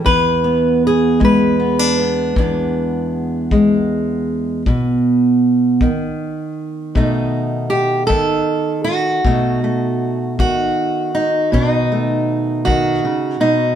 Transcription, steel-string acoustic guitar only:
0.05 E2 B4
0.44 B3
0.87 G#4
1.20 G#3
1.25 B4
1.60 B3
1.79 D4
2.00 B3
2.37 E2 B3 D4
3.52 G#3
4.67 B2
5.82 D#3
6.95 B2 A3 D#4
7.70 G4
8.07 D#3 A4
8.84 F#4
9.25 B2 A3 D#4
9.64 A3
10.40 D#3 F#4
11.15 D#4
11.52 B2 D4
11.71 D#4
11.92 A3
12.65 D#3 F#4
13.05 C#3
13.40 B2 D#4

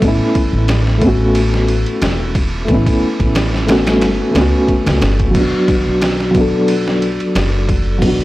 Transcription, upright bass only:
0.02 A1
0.53 A1
2.02 E1
2.69 A1
3.20 A1
4.02 G1
4.35 C#2
4.86 C#2
5.02 G1
5.35 B1
5.86 B1
7.35 F#1
8.02 B1

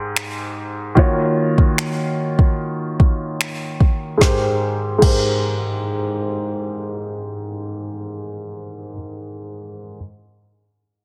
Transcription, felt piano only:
Already playing: G#2 G#3 G4 A#4 C5
0.95 D#3 A#3 F4 F#4 C#5
4.17 G#2 G#3 G4
4.25 C5
4.98 G#2 G#3 G4
5.06 C5

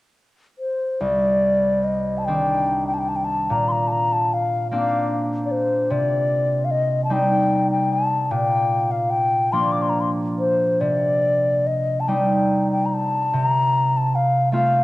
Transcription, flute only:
0.59 C5
1.01 D5
1.84 D#5
2.18 A5
2.25 G5
2.87 G5
2.94 A5
2.99 G5
3.09 A5
3.16 G5
3.24 A5
3.52 A#5
3.68 A#5 C6
3.88 A5 A#5
4.13 A5
4.34 F5
4.72 F5
5.46 D5
5.51 C5
5.91 D5
6.65 F5
6.71 D#5
7.05 A5
7.12 G5
7.71 G5
7.93 A5
8.25 A5
8.31 G5
8.91 F5
9.10 G5
9.52 C6
9.72 D6
9.82 C6
9.89 A#5
10.01 C6
10.39 C5
10.81 D5
11.67 D#5
12.00 A5
12.08 G5
12.71 G5
12.85 A#5
12.94 A5
13.36 A#5
13.97 A5
14.15 F5
14.53 F5

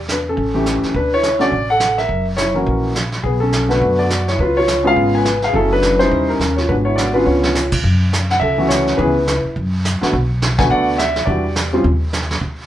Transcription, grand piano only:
0.12 D4 B4
0.29 C#4 A4
0.54 E3 A3 C#4 G4
0.96 D4 B4
1.14 E4 C#5
1.39 D3 A3 C#4 F#4 D5
1.70 A4 F#5
1.98 A#4 E5
2.37 E4 C#5
2.54 E3 A#3 C#4 F#4 A#4
3.23 B3 G#4
3.40 C#4 A4
3.68 D3 A3 B3 F#4 B4
3.73 D4
3.99 F#4 D5
4.28 E4 C#5
4.40 F4 B4
4.57 F4 C#5
4.84 C#3 G#3 B3 F4 F5
4.89 G#4
5.15 B4 G#5
5.44 G#4 F5
5.53 C#3 F#3 A3 C#4 E4 A4
5.73 D4 B4
5.99 G3 C#4 D#4 E4 C5
6.29 C#4 A#4
6.56 F4 C#5
6.69 D3 G#3 B3 D4 F#4 B4
6.85 E4 C#5
6.96 F#4 D5
7.14 D3 B3 C#4 D4 F4 B4
7.25 F4 C#5
8.31 F#5
8.40 A4 E5
8.58 E3 A3 C#4 F#4
8.69 C#5
8.97 E3 B3 C#4 G#4 B4
9.01 E4
10.01 D3 A3 B3 F#4
10.58 D3 A3 B3 F#4 G#5
10.71 D5 F#5
10.98 E5
11.26 E3 G3 D4 F#4 G4 D5
11.73 C#3 G3 C4 F4

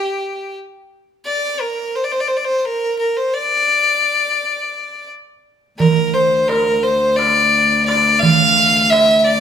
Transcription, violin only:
Already playing: G4
1.26 D5
1.60 A#4
1.95 C5
2.04 D5
2.12 C5
2.21 D5
2.28 C5
2.37 D5
2.45 C5
2.59 C5
2.65 A#4
2.99 A#4
3.17 C5
3.34 D5
5.79 A#4
6.13 C5
6.48 A#4
6.83 C5
7.16 D5
7.86 D5
8.20 F5
8.90 E5
9.19 E5
9.24 D5

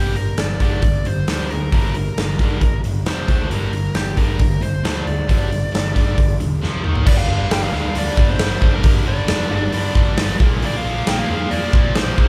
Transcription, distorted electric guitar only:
Already playing: G2 D3 G3
0.16 G2 D3
0.39 G2 D3
0.61 G2 D3 G3
0.83 G2 D3
1.06 G2 D3
1.29 G2 D3 G3
1.51 G2 D3
1.72 G2 D3 G3
1.95 G2 D3
2.19 G2 D3
2.40 G2 D3 G3
2.62 G2 D3
2.85 G2 D3
3.06 F2 C3 F3
3.29 D3 A3 D4
3.52 G2 D3 G3
3.73 G2 D3
3.95 G2 D3
4.17 G2 D3 G3
4.40 G2 D3
4.61 G2 D3
4.83 G2 D3 G3
5.06 G2 D3
5.28 G2 D3 G3
5.50 G2 D3
5.72 G2 D3
5.94 G2 D3 G3
6.16 G2 D3
6.40 G2 D3
6.62 F2 C3 F3
6.84 D#3 A#3 D#4
7.06 G2 D3 G3
7.28 G2 D3 G3
7.50 G2 D3 G3
7.73 G2 D3 G3
7.95 G2 D3 G3
8.17 G2 D3 G3
8.39 G2 D3 G3
8.62 G2 D3 G3
8.84 G2 D3 G3
9.05 G2 D3 G3
9.28 G2 D3 G3
9.50 G2 D3 G3
9.73 G2 D3 G3
9.95 G2 D3 G3
10.17 G2 D3 G3
10.40 A#2 F3 A#3
10.63 A#2 F3 A#3
10.85 A#2 F3 A#3
11.08 A#2 F3 A#3
11.31 A#2 F3 A#3
11.52 A#2 F3 A#3
11.75 A#2 F3 A#3
11.96 A#2 F3 A#3
12.19 A#2 F3 A#3

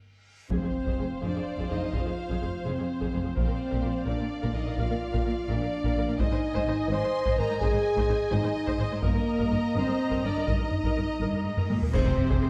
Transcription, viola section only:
0.51 G#4 C5
0.63 G#4
0.87 G#4
0.98 G#4
1.21 G#4
1.36 G#4
1.59 G#4
1.70 G#4
1.82 G#4
1.92 G#4
2.05 G#4
2.29 G#4
2.41 G#4
2.65 G#4
2.78 G#4
3.00 G#4
3.13 G#4
3.24 G#4
3.35 A#4
3.46 A#4
3.70 A#4
3.83 A#4
4.06 A#4
4.17 A#4
4.42 A#4
4.54 A#4
4.66 A#4
4.78 A#4
4.90 A#4
5.12 A#4
5.25 A#4
5.48 A#4
5.61 A#4
5.85 A#4
5.98 A#4
6.08 A#4
6.19 C5 D#5
6.32 C5
6.55 C5
6.68 C5
6.93 C5
7.03 C5
7.26 C5
7.39 C5
7.49 C5
7.62 C5
7.73 C5
7.97 C5
8.09 C5
8.32 C5
8.44 C5
8.67 C5
8.80 C5
8.92 C5
9.02 A#4 D#5
9.15 A#4
9.38 A#4
9.51 A#4
9.75 A#4
9.87 A#4
10.11 A#4
10.24 A#4
10.36 A#4
10.46 A#4
10.60 A#4
10.85 A#4
10.97 A#4
11.21 A#4
11.34 A#4
11.57 A#4
11.69 A#4
11.82 A#4
11.93 G#4 C5
12.05 G#4 C5
12.29 G#4 C5
12.41 G#4 C5

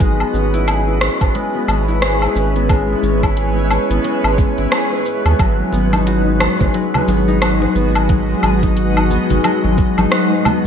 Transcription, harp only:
Already playing: B3 D#4 F#4
0.00 G#3
0.20 B3
0.34 C#4
0.54 E4
0.67 G#4
0.87 E4
1.01 C#4
1.21 B3
1.35 G#3
1.54 B3
1.68 C#4
1.88 E4
2.02 G#4
2.22 E4
2.35 C#4
2.56 B3
2.69 G#3
2.89 B3
3.03 C#4
3.23 E4
3.37 G#4
3.56 E4
3.70 C#4
3.90 B3
4.04 G#3
4.24 B3
4.38 C#4
4.58 E4
4.72 G#4
4.92 E4
5.05 C#4
5.25 B3
5.39 F#3
5.59 G#3
5.73 B3
5.93 D#4
6.07 F#4
6.27 D#4
6.40 B3
6.60 G#3
6.74 F#3
6.94 G#3
7.08 B3
7.28 D#4
7.41 F#4
7.61 D#4
7.75 B3
7.95 G#3
8.09 F#3
8.29 G#3
8.43 B3
8.63 D#4
8.76 F#4
8.96 D#4
9.10 B3
9.30 G#3
9.44 F#3
9.64 G#3
9.78 B3
9.98 D#4
10.11 F#4
10.31 D#4
10.45 B3

